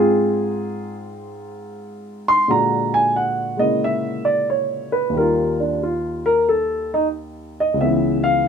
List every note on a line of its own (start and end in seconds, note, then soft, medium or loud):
0.00 2.47 G#2 medium
0.00 2.47 G#3 medium
0.00 2.51 C4 medium
0.00 2.53 F4 medium
0.00 0.95 G#4 medium
2.28 2.49 C6 loud
2.48 5.14 A#2 soft
2.48 5.14 D3 soft
2.48 3.55 G#3 soft
2.48 5.15 F#4 medium
2.48 2.93 A#5 medium
2.94 3.15 G#5 medium
3.16 3.59 F#5 medium
3.57 5.15 C#3 soft
3.57 5.13 G#3 soft
3.57 5.14 A#3 soft
3.57 5.15 E4 soft
3.57 3.81 D#5 medium
3.84 4.26 E5 medium
4.25 4.47 D5 medium
4.50 4.92 C#5 medium
4.92 5.14 B4 medium
5.10 7.75 D#2 soft
5.10 7.77 D#3 soft
5.17 7.79 G3 soft
5.17 5.82 F4 medium
5.17 5.59 A#4 medium
5.60 5.81 D4 medium
5.83 6.25 F4 medium
6.26 6.46 A#4 medium
6.49 6.90 A4 medium
6.94 7.06 D#4 medium
7.60 7.79 D#5 medium
7.74 8.48 C#2 medium
7.74 8.48 C#3 medium
7.81 8.48 E3 medium
7.81 8.48 B3 soft
7.81 8.22 E5 medium
8.24 8.43 F5 medium